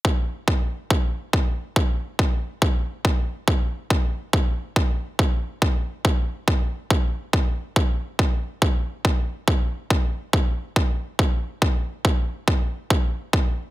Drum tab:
BD |o-o-o-o-|o-o-o-o-|o-o-o-o-|o-o-o-o-|

BD |o-o-o-o-|o-o-o-o-|o-o-o-o-|o-o-o-o-|